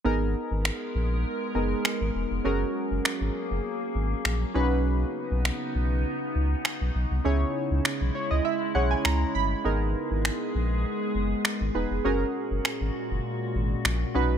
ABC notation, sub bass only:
X:1
M:4/4
L:1/16
Q:1/4=100
K:G#m
V:1 name="Sub bass" clef=bass
G,,,3 G,,,2 z A,,,3 z F,,,2 z G,,, E,,, ^E,,, | F,,,2 z F,,, z G,,, z F,,, z2 G,,,2 A,,,2 B,,,2- | B,,,3 B,,,2 z B,,,3 z C,,2 z B,,, B,,, =C,, | C,,2 z C,, z B,,, z C,, z2 B,,,2 C,,2 =G,,,2 |
G,,,3 G,,,2 z A,,,3 z F,,,2 z G,,, E,,, ^E,,, | F,,,2 z F,,, z G,,, z F,,, z2 G,,,2 A,,,2 B,,,2 |]